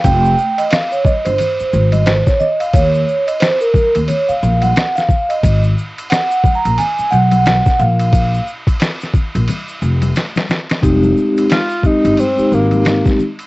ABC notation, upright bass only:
X:1
M:4/4
L:1/16
Q:"Swing 16ths" 1/4=89
K:Bbm
V:1 name="Upright bass" clef=bass
F,,,2 z4 z =G,,, z2 A,,,3 z3 | E,,2 z4 z E,, z2 B,,,2 z4 | A,,,2 z4 z B,,, z2 _C,,3 z B,,,2- | B,,,2 z4 z B,,, z2 F,,,2 z4 |
F,,,2 z4 z =G,,, z2 A,,,3 z3 |]